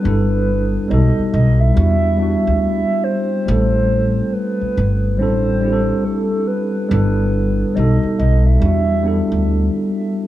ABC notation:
X:1
M:4/4
L:1/16
Q:"Swing 16ths" 1/4=70
K:Em
V:1 name="Soft synth lead"
B4 ^d2 d e4- e e2 c2- | c4 B4 c4 A2 B2- | B4 ^d2 d e6 z3 |]
V:2 name="Tine electric piano"
[G,B,DEA]4 [G,B,^DFA]4 [G,B,=DEF]2 [G,B,DEF]4- [G,B,DEF] z | [G,A,CEA]6 z2 [G,CDEA]2 [G,CDEGA]4- [G,CDEGA] z | [G,B,DEA]4 [G,B,^DFA]4 [G,B,=DEF]2 [G,B,DEA]4- [G,B,DEA] z |]
V:3 name="Upright bass" clef=bass
G,,,4 B,,, z B,,,2 E,,3 D,,2 z3 | A,,,4 z2 G,,,2 A,,,4 z4 | G,,,4 B,,, z B,,,2 E,,3 D,,2 z3 |]